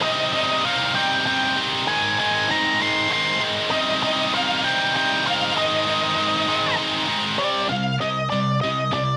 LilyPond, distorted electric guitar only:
\new Staff \with { instrumentName = "Distorted electric guitar" } { \clef bass \time 6/8 \key c \minor \tempo 4. = 65 <c g c' ees'>8 <c g c' ees'>8 <c g c' ees'>8 <c g c' ees'>8 <c g c' ees'>8 <c g c' ees'>8 | <aes, ees aes c' ees'>8 <aes, ees aes c' ees'>8 <aes, ees aes c' ees'>8 <aes, ees aes c' ees'>8 <aes, ees aes c' ees'>8 <aes, ees aes c' ees'>8 | <c g c' ees'>8 <c g c' ees'>8 <c g c' ees'>8 <c g c' ees'>8 <c g c' ees'>8 <c g c' ees'>8 | <aes, ees aes c' ees'>8 <aes, ees aes c' ees'>8 <aes, ees aes c' ees'>8 <aes, ees aes c' ees'>8 <aes, ees aes c' ees'>8 <aes, ees aes c' ees'>8 |
<c g c'>8 <c g>8 <c g>8 <c g>8 <c g>8 <c g>8 | }